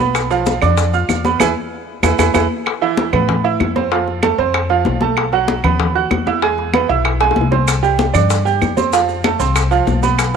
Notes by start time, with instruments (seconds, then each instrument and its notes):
Already playing: upright bass B1
0.00 upright piano B3 B4 B5, maracas
0.15 high bongo, high conga, claves, maracas
0.30 upright piano F3 F4 F5, high bongo, high conga, maracas
0.46 high bongo, high conga, maracas
0.62 upright bass F2, upright piano D4 D5 D6, high bongo, low conga, claves, maracas
0.77 high bongo, maracas
0.93 upright piano F4 F5 F6, high conga, maracas
1.09 upright bass E2, high bongo, low bongo, high conga, claves, maracas
1.25 upright piano B3 B4 B5, high bongo, high conga, maracas
1.40 upright bass E2, upright piano E4 G#4 B4, high bongo, high conga, claves, maracas
2.03 upright bass E2, upright piano E4 G#4 B4, high bongo, high conga, claves, maracas
2.18 upright bass E2, upright piano E4 G#4 B4, high bongo, high conga, claves, maracas
2.34 upright bass E2, upright piano E4 G#4 B4, high bongo, high conga, claves, maracas
2.66 high bongo, high conga, claves
2.81 upright piano E3 E4 E5, high bongo, high conga
2.97 high bongo, high conga
3.13 upright bass A2, upright piano B3 B4 B5, high bongo, high conga, low conga, claves
3.29 high bongo, high conga, low conga
3.44 upright piano E4 E5 E6, high conga
3.60 upright bass F2, high bongo, low bongo, high conga, claves
3.76 upright piano C4 C5 C6, high bongo, high conga
3.91 upright piano F3 F4 F5, high bongo, high conga
4.07 high bongo, high conga
4.23 upright piano A3 A4 A5, high bongo, high conga, claves
4.38 upright bass F2, upright piano C4 C5 C6, high bongo
4.54 high bongo, high conga, claves
4.69 upright piano F3 F4 F5, high conga
4.85 upright bass B1, high bongo, low bongo, high conga
5.01 upright piano A3 A4 A5, high bongo, high conga
5.17 high bongo, high conga, claves
5.32 upright piano F#3 F#4 F#5, high bongo, high conga
5.48 high bongo, high conga
5.64 upright bass D#2, upright piano B3 B4 B5, high bongo, high conga, low conga, claves
5.80 high bongo, high conga, low conga
5.95 upright piano F#4 F#5 F#6, high conga
6.11 upright bass E2, high bongo, low bongo, high conga, claves
6.27 upright piano E4 E5 E6, high bongo, high conga
6.42 upright piano G#3 G#4 G#5, high bongo, high conga
6.58 high bongo, high conga
6.74 upright piano B3 B4 B5, high bongo, high conga, claves
6.89 upright bass B1, upright piano E4 E5 E6, high bongo
7.05 high bongo, high conga, claves
7.21 upright piano G#3 G#4 G#5, high bongo, high conga
7.31 high bongo
7.36 upright bass C2, high conga
7.41 low bongo
7.51 upright piano C4 C5 C6, low bongo, high conga
7.68 high bongo, high conga, claves, maracas
7.83 upright piano G3 G4 G5, high bongo, high conga, maracas
7.99 high bongo, high conga, maracas
8.14 upright bass G2, upright piano D4 D5 D6, high bongo, high conga, low conga, claves, maracas
8.30 high bongo, high conga, maracas
8.45 upright piano G4 G5 G6, high conga, maracas
8.61 upright bass F2, high bongo, low bongo, high conga, claves, maracas
8.77 upright piano C4 C5 C6, high bongo, high conga, maracas
8.93 upright piano F3 F4 F5, high bongo, high conga, maracas
9.09 high bongo, high conga, maracas
9.24 upright piano A3 A4 A5, high bongo, high conga, claves, maracas
9.39 upright bass C2, upright piano C4 C5 C6, high bongo, maracas
9.55 high bongo, high conga, claves, maracas
9.71 upright piano F3 F4 F5, high conga, maracas
9.87 upright bass B1, high bongo, low bongo, high conga, maracas
10.03 upright piano B3 B4 B5, high bongo, high conga, maracas
10.19 high bongo, high conga, claves, maracas